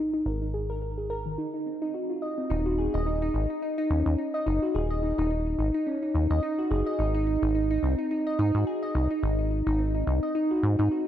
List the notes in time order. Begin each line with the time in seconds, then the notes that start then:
Already playing: G#1 D#4
0.14 D#4
0.26 G#1 A#4
0.42 D#4
0.54 G#4
0.70 A#4
0.82 A#4
0.98 G#4
1.10 A#4
1.26 D#3
1.38 D#4
1.54 D#4
1.66 C4
1.82 D#4
1.94 F#4
2.10 F4
2.22 D#5
2.38 C4
2.50 D#1 D#4
2.66 F#4
2.78 G#4
2.94 D#1 D#5
3.06 D#4
3.22 D#4
3.34 G#1 D#4
3.50 D#4
3.62 D#4
3.78 D#4
3.90 D#2 C#4
4.06 D#2 D#4
4.18 D#4
4.34 D#5
4.46 F#1 D#4
4.62 F#4
4.75 D#1 G#4
4.90 D#5
5.03 D#4
5.18 D#1 D#4
5.31 D#4
5.46 D#4
5.59 G#1 D#4
5.74 D#4
5.87 C#4
6.03 D#4
6.15 D#2 D#4
6.30 D#2 D#5
6.43 D#4
6.59 F#4
6.71 F#1 G#4
6.86 D#5
6.99 G#1 D#4
7.14 D#4
7.27 D#4
7.42 G#1 D#4
7.55 D#4
7.71 D#4
7.83 C2 C4
7.99 D#4
8.11 D#4
8.27 D#5
8.39 G#2 D#4
8.55 G#2 F#4
8.67 G#4
8.83 D#5
8.95 C2 D#4
9.11 D#4
9.23 G#1 D#4
9.39 D#4
9.51 D#4
9.67 G#1 D#4
9.79 C4
9.95 D#4
10.07 C2 D#4
10.23 D#5
10.35 D#4
10.51 F#4
10.63 G#2 C4
10.79 G#2 D#4
10.91 F#4